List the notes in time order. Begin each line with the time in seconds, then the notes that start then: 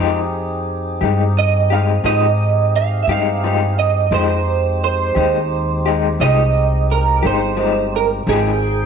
Already playing: F2 F3 G#3 C4 D#4 G4 G#4
0.00 G4
1.01 G2 G#3 D#4 G4
1.39 D#5
1.70 G#3 D#4 G4 F5
2.04 G#2 F3 G#3 D#4 G4 D#5
2.76 F5
3.03 E5
3.07 G2 D#4 G4 F5
3.12 G#3
3.44 F3 G#3 D#4 G4
3.79 D#5
4.11 F2 F3 G#3 C4 D#4 G4 C5
4.84 C5
5.15 D#2 G#3 D#4 G4
5.86 G#3 D#4 G4
6.20 C2 F3 G#3 D#4 G4 D#5
6.91 A#4
7.23 G1 G#3 D#4 G4 C5
7.57 F3 G#3 D#4 G4
7.96 A#4
8.27 G#1 F3 G#3 C4 D#4 G4 G#4 G5